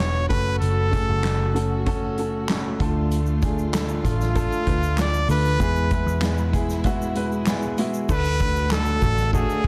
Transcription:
Already playing: picked electric bass E1, grand piano B2 B3 B4 D5, string section D3 B3 F#4
0.00 grand piano D4 F#4 C#5, trumpet C#5
0.29 picked electric bass F#1, string section C#3 A3, grand piano A3 C#4 F#4 A4, trumpet B4, kick, closed hi-hat
0.59 picked electric bass F#1, trumpet A4, closed hi-hat
0.91 grand piano A3 C#4 F#4 G#4, kick, closed hi-hat
1.09 picked electric bass F#1
1.22 grand piano A3 C#4 F#4 A4, snare, clap, closed hi-hat
1.53 grand piano A3 C#4 F#4 A4, closed hi-hat
1.86 grand piano A3 C#4 F#4 A4, kick, closed hi-hat
2.18 grand piano A3 C#4 F#4 A4, closed hi-hat
2.49 grand piano A3 C#4 F#4 A4, snare, clap, closed hi-hat
2.80 picked electric bass D2, string section D3 F4, grand piano D3 A3 D4 F4 A4, kick, closed hi-hat
3.11 closed hi-hat, shaker
3.26 shaker
3.42 grand piano A3 D4 F4 G#4, kick, closed hi-hat, shaker
3.58 shaker
3.72 grand piano A3 D4 F4 A4, snare, clap, closed hi-hat, shaker
3.89 shaker
4.03 picked electric bass A1, grand piano A3 D4 F4 A4, trumpet F4, kick, closed hi-hat, shaker
4.20 snare, shaker
4.35 grand piano A3 D4 F4 A4, kick, closed hi-hat, shaker
4.52 shaker
4.66 picked electric bass D2, grand piano A3 D4 F4 B4, kick, closed hi-hat
4.83 shaker
4.96 grand piano A3 D4 F4 A4, snare, clap, closed hi-hat, shaker
5.01 trumpet D5
5.14 shaker
5.28 picked electric bass D2, grand piano A3 D4 F4 A4, trumpet B4, open hi-hat, shaker
5.45 shaker
5.59 picked electric bass E2, string section B2 G#3 E4, grand piano E3 G#3 B3 E4 G#4, kick, closed hi-hat, shaker
5.76 shaker
5.91 grand piano G#3 B3 E4 G#4, kick, closed hi-hat, shaker
6.06 picked electric bass E2, shaker
6.21 grand piano G#3 B3 E4 G#4, snare, clap, closed hi-hat, shaker
6.38 shaker
6.52 grand piano G#3 B3 E4 G#4, kick, closed hi-hat, shaker
6.69 snare, shaker
6.84 grand piano G#3 B3 E4 F#4, kick, closed hi-hat, shaker
7.02 shaker
7.15 grand piano G#3 B3 E4 B4, closed hi-hat
7.32 shaker
7.46 grand piano G#3 B3 E4 G#4, snare, clap, closed hi-hat, shaker
7.62 shaker
7.78 grand piano G#3 B3 E4 F#4, closed hi-hat, shaker
7.94 shaker
8.08 picked electric bass D2, string section D3 A3 F#4, grand piano D3 A3 D4 F#4 A4, trumpet B4, kick, crash, shaker
8.25 shaker
8.39 grand piano A3 D4 F#4 A4, kick, ride, shaker
8.56 shaker
8.71 grand piano A3 D4 F#4 A4, trumpet A4, snare, clap, ride, shaker
8.85 shaker
9.01 picked electric bass A1, grand piano A3 D4 F#4 A4, kick, ride, shaker
9.18 snare, shaker
9.33 grand piano A3 D4 F#4 A4, trumpet G#4, kick, ride, shaker
9.50 shaker
9.63 kick, ride

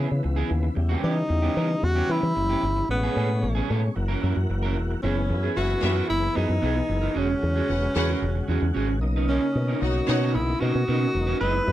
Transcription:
Already playing: tonewheel organ C#3 E3 B3
0.09 fingered electric bass C#3, muted clean electric guitar stroke
0.23 fingered electric bass C#2, muted clean electric guitar stroke
0.36 clean electric guitar B3 E4 G#4
0.50 fingered electric bass D#2, muted clean electric guitar stroke
0.63 muted clean electric guitar stroke
0.75 fingered electric bass E2, tonewheel organ G3, muted clean electric guitar stroke
0.89 clean electric guitar B3 C#4 G4
1.02 fingered electric bass E3, clean electric guitar B3 C#4 G4, tenor saxophone D#4
1.16 muted clean electric guitar stroke
1.29 fingered electric bass E2, muted clean electric guitar stroke
1.42 clean electric guitar B3 C#4 G4
1.55 fingered electric bass E3, clean electric guitar B3 C#4 A#4
1.69 muted clean electric guitar stroke
1.83 fingered electric bass E2, tenor saxophone F#4, muted clean electric guitar stroke
1.96 clean electric guitar B3 C#4 G4
2.09 fingered electric bass E3, clean electric guitar B3 C#4 G4, tenor saxophone E4
2.23 fingered electric bass E3, muted clean electric guitar stroke
2.35 fingered electric bass F#1, muted clean electric guitar stroke
2.50 clean electric guitar B3 C#4 G4
2.63 fingered electric bass G1, muted clean electric guitar stroke
2.77 muted clean electric guitar stroke
2.89 fingered electric bass A1, tonewheel organ B2 G#3 C#4, tenor saxophone B3, muted clean electric guitar stroke
3.03 clean electric guitar B3 C#4 G#4
3.16 fingered electric bass A2, clean electric guitar B3 C#4 G#4
3.30 muted clean electric guitar stroke
3.42 fingered electric bass A1, muted clean electric guitar stroke
3.55 clean electric guitar B3 C#4 G#4
3.68 fingered electric bass A2, clean electric guitar B3 C#4 A4
3.82 muted clean electric guitar stroke
3.95 fingered electric bass F#1, tonewheel organ E3 A#3 F#4, muted clean electric guitar stroke
4.08 clean electric guitar C#4 E4 A#4
4.22 fingered electric bass F#2, clean electric guitar C#4 E4 A#4
4.36 fingered electric bass F#2, muted clean electric guitar stroke
4.49 fingered electric bass F#1, muted clean electric guitar stroke
4.63 clean electric guitar C#4 E4 A#4
4.76 fingered electric bass E1, muted clean electric guitar stroke
4.91 muted clean electric guitar stroke
5.02 fingered electric bass F#1, tonewheel organ E3 B3 G#4, clean electric guitar B3 E4 G#4, tenor saxophone C#4
5.16 muted clean electric guitar stroke
5.29 fingered electric bass F#2, muted clean electric guitar stroke
5.43 clean electric guitar B3 E4 G#4
5.56 fingered electric bass F#1, string section C#4 B4 E5, tenor saxophone F#4, muted clean electric guitar stroke
5.69 muted clean electric guitar stroke
5.81 fingered electric bass F#2, clean electric guitar B3 E4 G#4, string section C#4 B4 E5
5.95 clean electric guitar B3 E4 A#4
6.10 fingered electric bass F#1, tenor saxophone E4
6.22 muted clean electric guitar stroke
6.35 fingered electric bass F#2, clean electric guitar B3 E4 G#4, tenor saxophone D#4
6.49 fingered electric bass F#2, muted clean electric guitar stroke
6.62 fingered electric bass B1, clean electric guitar B3 E4 G#4
6.76 muted clean electric guitar stroke
6.89 fingered electric bass F#1, muted clean electric guitar stroke
7.02 clean electric guitar B3 E4 A#4
7.14 fingered electric bass E1, tonewheel organ C#3 G#3 F#4, clean electric guitar C#4 F#4 G#4, tenor saxophone C#4
7.29 muted clean electric guitar stroke
7.42 fingered electric bass E2, muted clean electric guitar stroke
7.56 clean electric guitar C#4 F#4 G#4
7.68 fingered electric bass E1, string section C#4 B4 F#5, muted clean electric guitar stroke
7.83 muted clean electric guitar stroke
7.95 fingered electric bass E2, string section C#4 B4 F#5, clean electric guitar C#4 F#4 G#4
8.10 clean electric guitar C#4 F#4 A#4
8.22 fingered electric bass E1
8.35 muted clean electric guitar stroke
8.48 fingered electric bass E2, clean electric guitar C#4 F#4 G#4
8.62 fingered electric bass E2, muted clean electric guitar stroke
8.74 fingered electric bass G#1, clean electric guitar C#4 F#4 G#4
8.89 muted clean electric guitar stroke
9.01 fingered electric bass B1, tonewheel organ A#3 D#4, muted clean electric guitar stroke
9.16 clean electric guitar C#4 D#4 B4
9.29 clean electric guitar C#4 D#4 A#4, tenor saxophone C#4
9.42 muted clean electric guitar stroke
9.55 fingered electric bass B2, muted clean electric guitar stroke
9.68 clean electric guitar C#4 D#4 A#4
9.81 fingered electric bass B1, string section D#4 C#5 F#5, tenor saxophone F#4, muted clean electric guitar stroke
9.95 muted clean electric guitar stroke
10.07 fingered electric bass B2, clean electric guitar C#4 D#4 A#4, string section D#4 C#5 F#5
10.21 clean electric guitar C#4 D#4 B4
10.34 fingered electric bass B1, tenor saxophone E4
10.47 muted clean electric guitar stroke
10.60 fingered electric bass B2, clean electric guitar C#4 D#4 A#4, tenor saxophone F#4
10.74 fingered electric bass B2, muted clean electric guitar stroke
10.88 fingered electric bass B2, clean electric guitar C#4 D#4 A#4
11.01 muted clean electric guitar stroke
11.14 fingered electric bass E1, muted clean electric guitar stroke
11.27 clean electric guitar C#4 D#4 B4
11.40 fingered electric bass F#1, tonewheel organ G#3 B3 D#4 E4, clean electric guitar E4 B4 D#5, tenor saxophone B4
11.53 muted clean electric guitar stroke
11.67 fingered electric bass F#2, muted clean electric guitar stroke

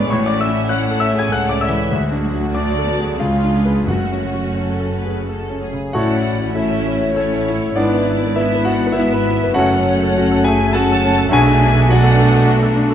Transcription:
Already playing: grand piano G#2 G#3 B3 E4 G#4 A4 B4 C#5 D5 G#5 A5 B5 C#6 D6, viola section B3
0.09 double bass section A1, cello section A2, grand piano A2 C#5 C#6, viola section A3 C#4, violin section F#4 C#5
0.24 violin section D5, grand piano D5 D6
0.33 grand piano C#4
0.40 violin section E5, grand piano E5 E6
0.49 grand piano E4
0.69 grand piano C#4 F#5 F#6, violin section E4 F#5
0.91 grand piano A4
1.00 grand piano E5 E6, violin section E5
1.14 grand piano G#4
1.18 violin section G#5, grand piano G#5 G#6
1.31 double bass section C#2, cello section C#2, viola section A3, violin section E4 F#5, grand piano A4 F#5 F#6
1.49 grand piano C#4 D5 D6, violin section D5
1.61 grand piano E5 E6, violin section E5
1.69 grand piano E3
1.91 grand piano D2, cello section D2, double bass section D2, viola section G#3, violin section F#4
2.11 grand piano D4
2.23 viola section F#3
2.34 grand piano F#4
2.54 viola section A3, grand piano D4 D5 D6, violin section D5
2.78 grand piano A4
2.87 viola section B3
2.99 grand piano G#4
3.18 cello section C#2, double bass section C#2, grand piano C#2 F4 F5, viola section G#3 C#4, violin section F4 G#4
3.43 grand piano D4
3.65 grand piano G#4 B4
3.87 double bass section F#1, grand piano F#2 F#4 F#5, cello section F#2, timpani F#2, viola section A3 C#4, violin section F#4
4.12 grand piano C#4
4.34 grand piano F#4
4.55 grand piano C#4, violin section A4
4.80 grand piano A4
4.95 violin section B4
5.06 grand piano G#4
5.28 violin section A4, grand piano A4
5.50 grand piano C#4
5.64 violin section G#4
5.73 grand piano C#3
5.93 double bass section A1, grand piano A2 F#4 C#5 F#5, cello section A2, bassoon A3, viola section A3 C#4, french horn section C#4 E4, clarinet E4, violin section E4 F#5, cor anglais C#5, flute D5
6.08 grand piano C#5
6.22 grand piano E4
6.39 grand piano C#5
6.53 viola section A3 C#4, french horn section C#4 E4, grand piano E4 A4 C#5 E5, violin section E4 E5, flute C#5
6.71 grand piano C#5
6.86 grand piano C#4
7.01 grand piano C#5
7.14 viola section A3 C#4, french horn section C#4 E4, grand piano C#4 A4 C#5, violin section E4 C#5, flute A4
7.34 grand piano C#5
7.50 grand piano E4
7.65 grand piano C#5
7.76 double bass section G#1, cello section G#2, bassoon B3, french horn section B3 E4, viola section B3, grand piano D4 D5, violin section E4 D5, clarinet E4, flute B4, cor anglais B4
7.80 grand piano G#2
7.94 grand piano B4
8.10 grand piano E4
8.27 grand piano B4
8.36 viola section B3, french horn section B3 E4, grand piano E4 B4 E5, violin section E4 E5, flute B4
8.41 grand piano E4
8.55 grand piano B4
8.65 grand piano F#4 F#5, flute D5, violin section F#5
8.72 grand piano B3
8.87 grand piano B4
8.92 french horn section B3 E4, viola section B3, grand piano E4 B4 E5, violin section E4, flute B4
8.97 grand piano E4, violin section E5
9.13 grand piano B4
9.29 grand piano E4
9.44 grand piano B4
9.54 double bass section F#1, cello section F#2, french horn section A3 C#4, bassoon A3, viola section A3 C#4, clarinet C#4, cor anglais F#4, grand piano F#4 C#5 F#5, violin section A4 F#5, flute C#5
9.58 grand piano F#2
9.74 grand piano A4
9.89 grand piano C#4
10.03 grand piano A4
10.18 grand piano F#4
10.31 grand piano A4
10.43 grand piano G#4 G#5, flute E5, violin section G#5
10.48 grand piano A3
10.62 grand piano A4
10.73 french horn section A3 C#4, viola section A3 C#4, grand piano F#4 A4 F#5 A5, violin section A4 A5, flute F#5
10.92 grand piano A4
11.05 grand piano C#4
11.18 grand piano A4
11.29 double bass section B1, grand piano B1, cello section B2, bassoon A3, viola section A3 D4, french horn section A3 D4, clarinet D4, cor anglais F#4, violin section F#4 G#5, flute E5
11.33 grand piano G#4 G#5
11.46 grand piano A4
11.60 grand piano D4
11.74 grand piano A4
11.89 viola section A3 D4, french horn section A3 D4, grand piano F#4 D5 F#5, violin section F#4 F#5, flute D5
12.03 grand piano A4
12.19 grand piano A3
12.35 grand piano A4
12.48 grand piano F#4
12.63 grand piano A4
12.76 grand piano D4
12.91 grand piano A4

